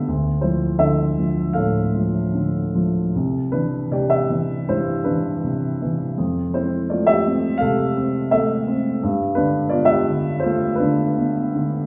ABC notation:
X:1
M:4/4
L:1/16
Q:1/4=82
K:Ddor
V:1 name="Upright piano"
z2 [Ec]2 [Ae]4 [Af]6 z2 | z2 [DB]2 [Gd] [Ge]3 [Ec]2 [DB]4 z2 | z2 [Ec]2 [Fd] [Ge]3 [Af]4 [Ae]3 z | z2 [DB]2 [Fd] [Ge]3 [Fc]2 [DB]4 z2 |]
V:2 name="Upright piano" clef=bass
D,,2 F,2 D,2 F,2 A,,2 F,2 D,2 F,2 | C,,2 E,2 C,2 E,2 G,,2 E,2 C,2 E,2 | F,,2 C2 A,2 C2 C,2 C2 A,2 C2 | G,,2 D,2 B,,2 D,2 A,2 D,2 B,2 D,2 |]